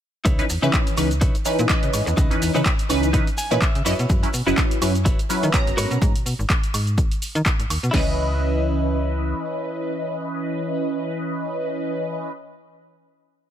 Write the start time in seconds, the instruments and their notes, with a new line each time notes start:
0.25 fm bass C#2, clean electric guitar D#4 E4 B4 C#5, kick, closed hi-hat, maracas, shaker
0.38 analog polysynth E3 C#4 D#4 B4, closed hi-hat, maracas, shaker
0.50 fm bass E2, open hi-hat, maracas, shaker
0.62 fm bass C#3, analog polysynth E3 C#4 B4, clean electric guitar D#4 E4 B4 E5, maracas, shaker
0.74 kick, clap, closed hi-hat, maracas, shaker
0.87 closed hi-hat, maracas, shaker
0.97 fm bass C#2, analog polysynth E3 C#4 D#4 B4, muted clean electric guitar stroke, open hi-hat, high woodblock, maracas, shaker
1.11 closed hi-hat, maracas, shaker
1.21 fm bass C#3, clean electric guitar D#4 E4 B4 C#5, kick, closed hi-hat, shaker, maracas
1.35 closed hi-hat, shaker, maracas
1.45 analog polysynth E3 C#4 D#4 B4, muted clean electric guitar stroke, open hi-hat, maracas, shaker
1.59 fm bass A#2, closed hi-hat, maracas, shaker
1.69 analog polysynth E3 C#4 B4 D#5, muted clean electric guitar stroke, kick, clap, closed hi-hat, shaker, maracas
1.82 fm bass C#3, closed hi-hat, maracas, shaker
1.93 fm bass G#2, open hi-hat, high woodblock, maracas, shaker
2.06 fm bass E2, muted clean electric guitar stroke, closed hi-hat, maracas, shaker
2.17 fm bass C#2, clean electric guitar D#4 E4 B4 D#5, kick, closed hi-hat, maracas, shaker
2.30 fm bass E2, analog polysynth E3 C#4 D#4 B4, closed hi-hat, maracas, shaker
2.42 fm bass E2, open hi-hat, shaker, maracas
2.54 fm bass C#3, analog polysynth E3 C#4 D#4 B4, clean electric guitar D#4 E4 B4 C#5, maracas, shaker
2.65 kick, clap, closed hi-hat, maracas, shaker
2.78 closed hi-hat, maracas, shaker
2.89 fm bass C#2, analog polysynth E3 C#4 D#4 B4, muted clean electric guitar stroke, open hi-hat, high woodblock, maracas, shaker
3.03 closed hi-hat, maracas, shaker
3.13 fm bass C#3, analog polysynth E3 C#4 D#4 B4, clean electric guitar D#4 E4 B4 D#5, kick, closed hi-hat, maracas, shaker
3.27 closed hi-hat, maracas, shaker
3.37 clean electric guitar G#5, muted clean electric guitar stroke, open hi-hat, maracas, shaker
3.51 fm bass A#2, analog polysynth E3 C#4 D#4 B4, closed hi-hat, maracas, shaker
3.61 clean electric guitar E5, muted clean electric guitar stroke, kick, clap, closed hi-hat, maracas, shaker
3.75 fm bass C#3, closed hi-hat, maracas, shaker
3.85 fm bass F#2, analog polysynth F#3 C#4 E4 D#5, clean electric guitar E4 F#4 B4 C#5, open hi-hat, high woodblock, maracas, shaker
3.99 fm bass B2, closed hi-hat, maracas, shaker
4.09 fm bass F#2, kick, closed hi-hat, maracas, shaker
4.23 analog polysynth F#3 C#4 E4 B4, closed hi-hat, shaker, maracas
4.33 fm bass B2, open hi-hat, maracas, shaker
4.46 fm bass F#1, analog polysynth F#3 C#4 E4 B4, clean electric guitar E4 F#4 B4 D#5, maracas, shaker
4.58 kick, clap, closed hi-hat, maracas, shaker
4.71 closed hi-hat, maracas, shaker
4.81 fm bass F#2, analog polysynth F#3 C#4 E4 B4, muted clean electric guitar stroke, open hi-hat, high woodblock, maracas, shaker
4.95 closed hi-hat, maracas, shaker
5.05 fm bass F#1, clean electric guitar E4 F#4 B4 C#5, kick, closed hi-hat, shaker, maracas
5.19 closed hi-hat, maracas, shaker
5.29 analog polysynth F#3 C#4 E4 B4, muted clean electric guitar stroke, open hi-hat, maracas, shaker
5.43 fm bass D#3, closed hi-hat, maracas, shaker
5.53 analog polysynth F#3 B3 C#4 A#5, muted clean electric guitar stroke, kick, clap, closed hi-hat, maracas, shaker
5.67 fm bass F#1, closed hi-hat, maracas, shaker
5.77 fm bass G#2, clean electric guitar F#4 A#4 B4 C#5, open hi-hat, high woodblock, maracas, shaker
5.90 fm bass B2, closed hi-hat, maracas, shaker
6.02 fm bass G#2, kick, closed hi-hat, shaker
6.15 fm bass B2, closed hi-hat, shaker
6.26 fm bass B2, open hi-hat, shaker
6.39 fm bass G#1, shaker
6.50 kick, clap, closed hi-hat, shaker
6.64 closed hi-hat, shaker
6.74 fm bass G#2, open hi-hat, high woodblock, shaker
6.87 closed hi-hat, shaker
6.98 fm bass G#1, kick, closed hi-hat, shaker
7.11 closed hi-hat, shaker
7.22 open hi-hat, shaker
7.35 fm bass D#3, closed hi-hat, shaker
7.46 kick, clap, closed hi-hat, shaker
7.59 fm bass G#1, closed hi-hat, shaker
7.70 fm bass D#2, open hi-hat, high woodblock, shaker
7.83 fm bass B2, closed hi-hat, shaker
7.91 fm bass C#2, analog polysynth E3 C#4 B4 D#5, clean electric guitar E4 B4, kick, snare, crash
7.97 clean electric guitar D#5